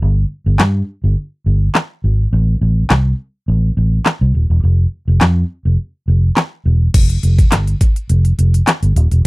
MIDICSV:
0, 0, Header, 1, 3, 480
1, 0, Start_track
1, 0, Tempo, 576923
1, 17, Time_signature, 4, 2, 24, 8
1, 7712, End_track
2, 0, Start_track
2, 0, Title_t, "Fingered electric bass"
2, 0, Program_c, 0, 33
2, 17, Note_on_c, 0, 31, 98
2, 195, Note_off_c, 0, 31, 0
2, 384, Note_on_c, 0, 31, 89
2, 468, Note_off_c, 0, 31, 0
2, 496, Note_on_c, 0, 43, 104
2, 674, Note_off_c, 0, 43, 0
2, 863, Note_on_c, 0, 31, 94
2, 947, Note_off_c, 0, 31, 0
2, 1216, Note_on_c, 0, 31, 86
2, 1394, Note_off_c, 0, 31, 0
2, 1697, Note_on_c, 0, 32, 80
2, 1874, Note_off_c, 0, 32, 0
2, 1936, Note_on_c, 0, 33, 109
2, 2114, Note_off_c, 0, 33, 0
2, 2175, Note_on_c, 0, 33, 93
2, 2353, Note_off_c, 0, 33, 0
2, 2415, Note_on_c, 0, 36, 91
2, 2594, Note_off_c, 0, 36, 0
2, 2896, Note_on_c, 0, 33, 97
2, 3074, Note_off_c, 0, 33, 0
2, 3137, Note_on_c, 0, 33, 91
2, 3314, Note_off_c, 0, 33, 0
2, 3505, Note_on_c, 0, 36, 85
2, 3588, Note_off_c, 0, 36, 0
2, 3616, Note_on_c, 0, 27, 81
2, 3711, Note_off_c, 0, 27, 0
2, 3743, Note_on_c, 0, 28, 79
2, 3827, Note_off_c, 0, 28, 0
2, 3856, Note_on_c, 0, 29, 92
2, 4034, Note_off_c, 0, 29, 0
2, 4223, Note_on_c, 0, 29, 89
2, 4307, Note_off_c, 0, 29, 0
2, 4335, Note_on_c, 0, 41, 100
2, 4514, Note_off_c, 0, 41, 0
2, 4703, Note_on_c, 0, 29, 86
2, 4787, Note_off_c, 0, 29, 0
2, 5057, Note_on_c, 0, 29, 86
2, 5234, Note_off_c, 0, 29, 0
2, 5537, Note_on_c, 0, 28, 89
2, 5714, Note_off_c, 0, 28, 0
2, 5777, Note_on_c, 0, 29, 105
2, 5954, Note_off_c, 0, 29, 0
2, 6017, Note_on_c, 0, 29, 91
2, 6194, Note_off_c, 0, 29, 0
2, 6257, Note_on_c, 0, 31, 89
2, 6434, Note_off_c, 0, 31, 0
2, 6736, Note_on_c, 0, 29, 94
2, 6914, Note_off_c, 0, 29, 0
2, 6977, Note_on_c, 0, 29, 92
2, 7154, Note_off_c, 0, 29, 0
2, 7343, Note_on_c, 0, 31, 88
2, 7427, Note_off_c, 0, 31, 0
2, 7456, Note_on_c, 0, 27, 94
2, 7550, Note_off_c, 0, 27, 0
2, 7584, Note_on_c, 0, 28, 87
2, 7667, Note_off_c, 0, 28, 0
2, 7712, End_track
3, 0, Start_track
3, 0, Title_t, "Drums"
3, 495, Note_on_c, 9, 39, 110
3, 496, Note_on_c, 9, 38, 89
3, 578, Note_off_c, 9, 39, 0
3, 579, Note_off_c, 9, 38, 0
3, 1456, Note_on_c, 9, 39, 111
3, 1457, Note_on_c, 9, 38, 90
3, 1539, Note_off_c, 9, 39, 0
3, 1540, Note_off_c, 9, 38, 0
3, 2415, Note_on_c, 9, 39, 113
3, 2416, Note_on_c, 9, 38, 87
3, 2498, Note_off_c, 9, 39, 0
3, 2499, Note_off_c, 9, 38, 0
3, 3376, Note_on_c, 9, 39, 112
3, 3377, Note_on_c, 9, 38, 86
3, 3459, Note_off_c, 9, 39, 0
3, 3460, Note_off_c, 9, 38, 0
3, 4336, Note_on_c, 9, 39, 110
3, 4337, Note_on_c, 9, 38, 91
3, 4419, Note_off_c, 9, 39, 0
3, 4420, Note_off_c, 9, 38, 0
3, 5297, Note_on_c, 9, 39, 116
3, 5298, Note_on_c, 9, 38, 92
3, 5380, Note_off_c, 9, 39, 0
3, 5381, Note_off_c, 9, 38, 0
3, 5776, Note_on_c, 9, 42, 75
3, 5776, Note_on_c, 9, 49, 85
3, 5777, Note_on_c, 9, 36, 102
3, 5859, Note_off_c, 9, 42, 0
3, 5859, Note_off_c, 9, 49, 0
3, 5860, Note_off_c, 9, 36, 0
3, 5904, Note_on_c, 9, 42, 50
3, 5987, Note_off_c, 9, 42, 0
3, 6017, Note_on_c, 9, 42, 71
3, 6100, Note_off_c, 9, 42, 0
3, 6144, Note_on_c, 9, 36, 90
3, 6147, Note_on_c, 9, 42, 50
3, 6228, Note_off_c, 9, 36, 0
3, 6230, Note_off_c, 9, 42, 0
3, 6255, Note_on_c, 9, 39, 118
3, 6256, Note_on_c, 9, 38, 89
3, 6257, Note_on_c, 9, 42, 102
3, 6339, Note_off_c, 9, 39, 0
3, 6340, Note_off_c, 9, 38, 0
3, 6340, Note_off_c, 9, 42, 0
3, 6385, Note_on_c, 9, 42, 62
3, 6468, Note_off_c, 9, 42, 0
3, 6496, Note_on_c, 9, 42, 76
3, 6497, Note_on_c, 9, 36, 97
3, 6579, Note_off_c, 9, 42, 0
3, 6581, Note_off_c, 9, 36, 0
3, 6624, Note_on_c, 9, 42, 49
3, 6708, Note_off_c, 9, 42, 0
3, 6735, Note_on_c, 9, 42, 88
3, 6818, Note_off_c, 9, 42, 0
3, 6862, Note_on_c, 9, 42, 53
3, 6946, Note_off_c, 9, 42, 0
3, 6978, Note_on_c, 9, 42, 75
3, 7061, Note_off_c, 9, 42, 0
3, 7107, Note_on_c, 9, 42, 59
3, 7190, Note_off_c, 9, 42, 0
3, 7217, Note_on_c, 9, 39, 114
3, 7217, Note_on_c, 9, 42, 84
3, 7218, Note_on_c, 9, 38, 88
3, 7300, Note_off_c, 9, 39, 0
3, 7300, Note_off_c, 9, 42, 0
3, 7301, Note_off_c, 9, 38, 0
3, 7343, Note_on_c, 9, 42, 46
3, 7427, Note_off_c, 9, 42, 0
3, 7458, Note_on_c, 9, 42, 79
3, 7542, Note_off_c, 9, 42, 0
3, 7584, Note_on_c, 9, 42, 54
3, 7667, Note_off_c, 9, 42, 0
3, 7712, End_track
0, 0, End_of_file